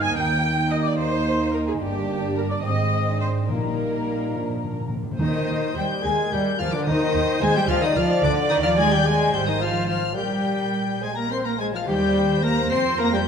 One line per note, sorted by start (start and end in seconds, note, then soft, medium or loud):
0.00 0.12 G1 medium
0.00 0.12 G2 medium
0.00 0.14 A#3 medium
0.00 0.15 C4 medium
0.00 0.14 D#4 medium
0.00 0.15 G#5 loud
0.00 0.15 G#6 medium
0.14 1.77 D#2 medium
0.14 1.78 A#3 medium
0.14 0.99 A#3 medium
0.14 1.77 D#4 medium
0.14 0.69 G5 medium
0.14 0.69 G5 loud
0.14 0.70 G6 medium
0.69 0.76 D#5 medium
0.69 0.84 D#5 loud
0.69 0.83 D#6 loud
0.82 0.97 D5 loud
0.82 0.99 D5 loud
0.82 0.89 D6 loud
0.96 1.79 D#4 medium
0.96 1.52 C5 loud
0.96 1.52 C5 medium
0.96 1.51 C6 loud
1.52 1.67 A#4 medium
1.52 1.59 A#4 medium
1.52 1.59 A#5 medium
1.66 1.72 G#4 medium
1.66 1.72 G#4 loud
1.66 1.80 G#5 medium
1.79 2.62 G1 medium
1.79 2.63 G2 medium
1.79 2.63 A#3 medium
1.79 2.63 D4 medium
1.79 2.35 G4 medium
1.79 2.35 G4 loud
1.79 2.34 G5 medium
2.35 2.50 A#4 medium
2.35 2.42 A#5 medium
2.48 2.56 D5 medium
2.48 2.65 D5 medium
2.48 2.63 D6 medium
2.63 3.47 G#1 medium
2.63 3.48 G#2 medium
2.63 3.48 G#3 medium
2.63 3.06 C4 medium
2.63 3.50 C4 medium
2.63 3.19 D#5 loud
2.63 3.19 D#5 medium
2.63 3.19 D#6 loud
3.07 3.49 D4 medium
3.20 3.28 C5 medium
3.20 3.49 C5 medium
3.20 3.28 C6 medium
3.48 4.99 A#1 medium
3.48 4.99 A#2 medium
3.48 4.31 A#2 medium
3.48 4.32 G3 medium
3.48 4.78 A#3 medium
3.48 4.34 D#4 medium
3.48 4.88 A#4 medium
3.48 4.88 A#5 medium
4.35 4.41 A#2 soft
4.35 4.92 F3 medium
4.35 4.92 D4 medium
4.49 4.55 A#2 soft
4.56 4.63 A#2 soft
4.64 4.71 A#2 medium
4.72 4.79 A#2 medium
4.80 4.87 A#2 medium
4.88 4.94 A#2 medium
4.95 5.02 A#2 medium
5.03 5.10 A#2 medium
5.11 5.18 A#2 medium
5.19 5.28 D#2 medium
5.19 5.99 D#3 loud
5.19 5.72 D#3 medium
5.19 5.77 D#4 medium
5.19 5.99 C5 loud
5.19 5.72 D#5 medium
5.19 5.71 D#6 medium
5.48 5.56 D#2 medium
5.74 5.83 D#2 medium
5.74 5.84 G3 medium
5.74 6.04 G3 medium
5.74 6.04 G4 medium
5.74 6.04 G5 medium
5.74 5.85 G5 medium
5.74 6.03 G6 loud
6.02 6.12 D#2 medium
6.02 6.12 G#3 medium
6.02 6.32 G#3 medium
6.02 6.33 G#4 loud
6.02 6.87 A#4 medium
6.02 6.31 G#5 medium
6.02 6.32 G#5 loud
6.02 6.31 G#6 loud
6.31 6.40 D#2 medium
6.31 6.59 G3 medium
6.31 6.60 G3 medium
6.31 6.58 G4 medium
6.31 6.37 G5 medium
6.31 6.40 G5 medium
6.31 6.59 G6 loud
6.58 6.68 D#2 medium
6.58 6.73 F3 medium
6.58 6.73 F3 loud
6.58 6.75 F4 loud
6.58 6.64 F5 medium
6.58 6.74 F5 medium
6.58 6.73 F6 loud
6.72 6.87 D3 loud
6.72 6.87 D4 medium
6.72 6.86 D5 medium
6.72 6.80 D5 medium
6.72 6.86 D6 loud
6.76 6.88 D3 medium
6.86 6.95 D#2 medium
6.86 7.65 D#3 loud
6.86 7.42 D#3 loud
6.86 7.41 D#3 loud
6.86 7.44 D#4 loud
6.86 7.68 C5 loud
6.86 7.41 D#5 loud
6.86 7.40 D#6 loud
7.14 7.22 D#2 medium
7.41 7.49 D#2 loud
7.41 7.47 G#3 loud
7.41 7.56 G#3 loud
7.41 7.55 G#4 loud
7.41 7.55 G#5 loud
7.41 7.55 G#6 loud
7.54 7.60 G3 loud
7.54 7.69 G3 loud
7.54 7.71 G4 loud
7.54 7.62 G5 loud
7.54 7.61 G5 loud
7.54 7.68 G6 loud
7.67 7.76 D2 loud
7.67 7.82 F3 loud
7.67 7.83 F3 loud
7.67 7.85 F4 loud
7.67 9.34 D5 loud
7.67 7.75 F5 medium
7.67 7.83 F5 loud
7.67 7.82 F6 loud
7.82 7.96 D#3 medium
7.82 7.97 D#3 loud
7.82 7.98 D#4 loud
7.82 7.89 D#5 medium
7.82 7.97 D#5 loud
7.82 7.96 D#6 loud
7.95 8.03 D2 medium
7.95 8.23 F3 loud
7.95 8.24 F3 loud
7.95 8.23 F4 loud
7.95 8.04 F5 medium
7.95 8.23 F5 loud
7.95 8.23 F6 loud
8.22 8.30 D2 loud
8.22 8.51 D3 loud
8.22 8.36 D4 loud
8.22 8.30 D5 loud
8.22 8.50 D5 loud
8.22 8.31 D6 loud
8.50 9.29 D#2 loud
8.50 8.56 D#3 medium
8.50 8.65 D#3 loud
8.50 8.56 D#4 loud
8.50 8.56 D#5 loud
8.50 8.57 D#5 loud
8.50 8.56 D#6 loud
8.63 8.77 F3 loud
8.63 8.78 F3 loud
8.63 8.81 F4 loud
8.63 8.69 F5 medium
8.63 8.78 F5 medium
8.63 8.69 F6 loud
8.77 8.92 G#3 loud
8.77 8.93 G#4 loud
8.77 8.91 G#5 loud
8.77 8.92 G#5 loud
8.77 8.92 G#6 loud
8.90 9.05 G3 medium
8.90 9.06 G3 medium
8.90 9.08 G4 loud
8.90 9.05 G5 medium
8.90 8.97 G5 loud
8.94 9.07 G6 loud
9.03 9.32 G#3 loud
9.03 9.33 G#3 medium
9.03 9.35 G#4 medium
9.03 9.32 G#5 loud
9.03 9.33 G#5 loud
9.03 9.33 G#6 loud
9.32 10.16 G#1 medium
9.32 9.39 G3 medium
9.32 9.48 G3 loud
9.32 9.49 G4 medium
9.32 10.16 C5 loud
9.32 9.47 G5 loud
9.32 9.47 G5 medium
9.32 9.47 G6 loud
9.45 9.60 D#3 medium
9.45 9.62 D#3 medium
9.45 9.63 D#4 medium
9.45 9.60 D#5 medium
9.45 9.62 D#5 medium
9.45 9.61 D#6 loud
9.59 9.72 F3 medium
9.59 9.89 F3 medium
9.59 9.88 F4 loud
9.59 9.86 F5 loud
9.59 9.88 F5 medium
9.59 9.88 F6 loud
9.87 10.16 F3 medium
9.87 9.98 F3 medium
9.87 10.02 F4 medium
9.87 10.16 F5 medium
9.87 9.98 F5 medium
9.87 10.17 F6 loud
10.14 11.64 A#1 medium
10.14 11.01 G3 medium
10.14 11.00 G4 medium
10.14 10.95 A#4 medium
10.14 11.01 G5 medium
10.14 11.01 G6 medium
10.19 11.01 G3 medium
11.00 11.09 G#3 medium
11.00 11.17 G#3 medium
11.00 11.09 G#4 medium
11.00 11.10 C5 medium
11.00 11.16 G#5 medium
11.00 11.17 G#5 medium
11.00 11.17 G#6 medium
11.15 11.30 A#3 medium
11.15 11.31 A#3 medium
11.15 11.33 A#4 medium
11.15 11.30 A#5 medium
11.15 11.31 A#5 medium
11.15 11.31 A#6 loud
11.30 11.45 C4 medium
11.30 11.39 A#4 medium
11.30 11.47 C5 medium
11.30 11.45 C6 medium
11.30 11.37 C7 medium
11.44 11.59 A#3 medium
11.44 11.59 A#4 medium
11.44 11.59 A#5 medium
11.44 11.50 A#5 medium
11.44 11.60 A#6 medium
11.57 11.72 G#3 medium
11.57 11.65 G#3 medium
11.57 11.73 G#4 medium
11.57 11.86 C5 medium
11.57 11.64 G#5 medium
11.57 11.73 G#5 medium
11.57 11.65 G#6 loud
11.73 11.87 F3 medium
11.73 11.87 F4 medium
11.73 11.87 F5 medium
11.73 11.81 F6 medium
11.87 12.67 D#2 medium
11.87 12.68 D#3 loud
11.87 12.43 G3 medium
11.87 12.42 G3 loud
11.87 12.42 G4 loud
11.87 13.28 C5 loud
11.87 12.44 G5 loud
11.87 12.42 G5 medium
11.87 12.42 G6 loud
12.42 12.71 A#3 loud
12.42 12.71 A#3 medium
12.42 12.72 A#4 medium
12.42 12.48 A#5 loud
12.42 12.71 A#5 loud
12.42 12.71 A#6 loud
12.71 13.28 F2 medium
12.71 12.99 C4 loud
12.71 12.84 C4 loud
12.71 12.98 C5 loud
12.71 12.99 C6 loud
12.71 12.99 C6 medium
12.71 12.99 C7 loud
12.98 13.13 A#3 loud
12.98 13.06 A#3 loud
12.98 13.15 A#4 loud
12.98 13.13 A#5 medium
12.98 13.14 A#5 loud
12.98 13.14 A#6 loud
13.12 13.27 G3 loud
13.12 13.19 G3 medium
13.12 13.27 G4 loud
13.12 13.26 G5 medium
13.12 13.19 G5 medium
13.12 13.28 G6 loud